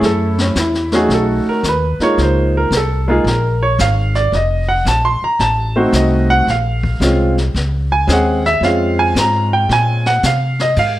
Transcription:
Already playing: grand piano A3 C#4 E4
0.01 upright bass F#2, grand piano A4, brush sweep, snare
0.38 grand piano C#4, snare
0.55 upright bass E2, grand piano E4, snare, hi-hat pedal
0.74 snare
0.92 grand piano A3 C#4 D#4 F#4 G#4, snare
1.09 upright bass B1, brush sweep, snare
1.14 grand piano A4
1.45 grand piano A#4, muted upright bass stroke
1.63 upright bass D#2, snare, hi-hat pedal
1.68 grand piano B4
1.99 grand piano G#3 A#3 D#4 F4, muted upright bass stroke, snare
2.03 grand piano C#5
2.17 upright bass C#2, brush sweep, snare
2.22 grand piano C5
2.57 grand piano A#4
2.71 upright bass C2, snare, hi-hat pedal
2.77 grand piano A4
3.08 grand piano G#3 A#3 D#4 F4 G#4
3.24 upright bass A#1, grand piano A#4, brush sweep, snare
3.63 grand piano C#5
3.79 upright bass G#1, grand piano F5, snare, hi-hat pedal
4.15 grand piano D5, snare
4.32 upright bass F1, grand piano D#5, brush sweep, snare
4.68 grand piano F#5
4.85 upright bass A#1, grand piano A5, snare, hi-hat pedal
5.05 grand piano C6
5.22 grand piano A#5, muted upright bass stroke
5.39 upright bass A1, grand piano A5, brush sweep, snare
5.76 grand piano A3 C4 D#4 F#4 C5
5.93 upright bass C2, grand piano D#5, snare, hi-hat pedal
6.30 grand piano F#5
6.47 upright bass A#1, grand piano F5, brush sweep, snare
6.83 kick
7.00 upright bass C2, grand piano G#3 C4 C#4 F4, snare, hi-hat pedal
7.38 snare
7.55 upright bass C#2, brush sweep, snare
7.92 grand piano G#5
8.07 upright bass D#2, grand piano G#3 C4 C#4 G#4, snare, hi-hat pedal
8.12 grand piano F#5
8.46 grand piano E5, snare
8.61 upright bass F2, grand piano G#3 C4 C#4 F4 F5, brush sweep, snare
8.99 grand piano G#5
9.15 upright bass G#2, grand piano A#5, snare, hi-hat pedal
9.53 grand piano G5
9.69 upright bass A#2, grand piano G#5, brush sweep, snare
10.06 grand piano F#5, snare
10.23 upright bass C3, grand piano F5, snare, hi-hat pedal
10.59 grand piano D#5, snare
10.76 upright bass G#2, grand piano F5, ride

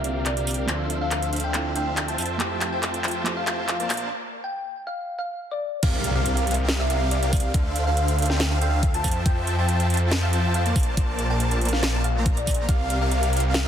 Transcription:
Already playing: detuned saw bass C2, felt piano D3 A#3 C4 F4, synth pluck E5
0.04 supersaw synth C4 G4 A#4 D5 F5, closed hi-hat
0.26 synth pluck D5, clap, closed hi-hat
0.37 supersaw synth C4 G4 A#4 D5 F5, closed hi-hat
0.47 closed hi-hat, open hi-hat
0.54 closed hi-hat
0.66 detuned saw bass D2, felt piano F3 C4 D4 F4, supersaw synth D4 A4 C5 E5 F5, clap, closed hi-hat
0.90 closed hi-hat
1.01 supersaw synth D4 A4 C5 E5 F5, synth pluck F5
1.11 clap, closed hi-hat
1.23 closed hi-hat
1.32 supersaw synth D4 A4 C5 E5 F5, closed hi-hat
1.36 closed hi-hat
1.40 closed hi-hat
1.44 synth pluck G5
1.52 felt piano C4 D4 E4, clap, closed hi-hat
1.56 felt piano F4
1.75 supersaw synth D4 A4 C5 E5 F5, synth pluck G5, closed hi-hat
1.97 clap, closed hi-hat
2.08 supersaw synth F4 C5 E5 G5 A5, synth pluck A5, closed hi-hat
2.18 detuned saw bass F2, closed hi-hat, open hi-hat
2.26 closed hi-hat
2.38 felt piano F3 A3 E4, supersaw synth F4 C5 E5 G5 A5, synth pluck G5, clap, closed hi-hat
2.42 felt piano G4
2.61 clap, closed hi-hat
2.72 supersaw synth F4 C5 E5 G5 A5, synth pluck G5
2.83 clap, closed hi-hat
2.94 closed hi-hat
3.04 supersaw synth F4 C5 E5 G5 A5, clap, closed hi-hat
3.08 closed hi-hat
3.11 closed hi-hat
3.24 felt piano F3 A3 E4 G4, clap, closed hi-hat
3.37 synth pluck F5
3.47 supersaw synth F4 C5 E5 G5 A5, clap, closed hi-hat
3.68 synth pluck F5, clap, closed hi-hat
3.79 supersaw synth A#3 A#4 C5 D5 A5, closed hi-hat
3.90 detuned saw bass A#1, clap, open hi-hat
3.94 closed hi-hat
3.97 closed hi-hat
4.44 synth pluck G5
4.87 synth pluck F5
5.19 synth pluck F5
5.51 synth pluck D5
5.83 detuned saw bass C2, supersaw synth C4 G4 A#4 D5 F5, digital synth lead F5, synth pluck F5, kick, closed hi-hat, crash, impact
6.04 closed hi-hat
6.15 supersaw synth C4 G4 A#4 D5 F5, digital synth lead F5, synth pluck F5
6.26 closed hi-hat
6.37 closed hi-hat
6.47 supersaw synth C4 G4 A#4 D5 F5, digital synth lead F5, closed hi-hat
6.51 closed hi-hat
6.54 closed hi-hat
6.69 snare, closed hi-hat
6.80 synth pluck E5
6.90 supersaw synth C4 G4 A#4 D5 F5, digital synth lead F5, closed hi-hat
7.11 synth pluck D5, closed hi-hat
7.22 supersaw synth C4 G4 A#4 D5 F5, digital synth lead F5, closed hi-hat
7.33 kick, closed hi-hat, open hi-hat
7.40 closed hi-hat
7.54 detuned saw bass D2, supersaw synth D4 A4 C5 E5 F5, digital synth lead F5, kick, closed hi-hat
7.76 closed hi-hat
7.87 supersaw synth D4 A4 C5 E5 F5, synth pluck F5, digital synth lead F5
7.97 closed hi-hat
8.08 closed hi-hat
8.18 supersaw synth D4 A4 C5 E5 F5, digital synth lead F5, closed hi-hat
8.22 closed hi-hat
8.26 closed hi-hat
8.30 synth pluck G5, snare
8.40 snare, closed hi-hat
8.61 supersaw synth D4 A4 C5 E5 F5, digital synth lead F5, synth pluck G5, closed hi-hat
8.83 kick, closed hi-hat
8.94 supersaw synth F4 C5 E5 G5 A5, digital synth lead A5, synth pluck A5, closed hi-hat
9.04 detuned saw bass F2, kick, closed hi-hat, open hi-hat
9.11 closed hi-hat
9.26 supersaw synth F4 C5 E5 G5 A5, synth pluck G5, digital synth lead A5, kick, closed hi-hat
9.47 closed hi-hat
9.58 supersaw synth F4 C5 E5 G5 A5, synth pluck G5, digital synth lead A5
9.69 closed hi-hat
9.80 closed hi-hat
9.90 supersaw synth F4 C5 E5 G5 A5, digital synth lead A5, closed hi-hat
9.94 closed hi-hat
9.97 closed hi-hat
10.12 snare, closed hi-hat
10.23 synth pluck F5
10.33 supersaw synth F4 C5 E5 G5 A5, digital synth lead A5, closed hi-hat
10.54 synth pluck F5, closed hi-hat
10.65 supersaw synth A#3 A#4 C5 D5 A5, digital synth lead A5, closed hi-hat
10.76 detuned saw bass A#1, kick, closed hi-hat, open hi-hat
10.83 closed hi-hat
10.97 supersaw synth A#3 A#4 C5 D5 A5, digital synth lead A5, kick, closed hi-hat
11.19 closed hi-hat
11.30 supersaw synth A#3 A#4 C5 D5 A5, synth pluck G5, digital synth lead A5
11.40 closed hi-hat
11.51 closed hi-hat
11.61 supersaw synth A#3 A#4 C5 D5 A5, digital synth lead A5, closed hi-hat
11.65 closed hi-hat
11.69 closed hi-hat
11.73 synth pluck F5, snare
11.83 snare, closed hi-hat
12.04 synth pluck F5, closed hi-hat
12.16 supersaw synth A#3 A#4 C5 D5 A#5, digital synth lead A#5
12.26 kick, closed hi-hat
12.37 synth pluck D5, closed hi-hat
12.47 kick, closed hi-hat, open hi-hat
12.54 closed hi-hat
12.68 detuned saw bass C2, supersaw synth C4 G4 A#4 D5 F5, synth pluck F5, digital synth lead F5, kick, closed hi-hat
12.90 closed hi-hat
13.01 supersaw synth C4 G4 A#4 D5 F5, synth pluck F5, digital synth lead F5
13.12 closed hi-hat
13.23 closed hi-hat
13.33 supersaw synth C4 G4 A#4 D5 F5, digital synth lead F5, closed hi-hat
13.37 closed hi-hat
13.40 closed hi-hat
13.54 snare, closed hi-hat

